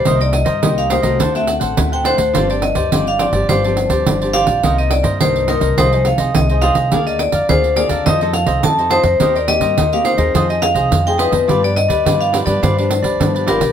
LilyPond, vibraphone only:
\new Staff \with { instrumentName = "Vibraphone" } { \time 4/4 \key c \minor \tempo 4 = 105 c''16 d''16 ees''8. f''16 c''8. e''16 fis''8. g''16 c''8~ | c''16 d''16 ees''8. f''16 d''8 c''4. f''8~ | f''16 ees''16 d''8 c''8 bes'8 c''8 f''8 ees''8 f''8~ | f''16 ees''16 d''8 c''8 d''8 ees''8 f''8 a''8 c''8~ |
c''16 d''16 ees''8. f''16 c''8. ees''16 f''8. g''16 b'8~ | b'16 d''16 ees''8. f''8 d''16 c''4. bes'8 | }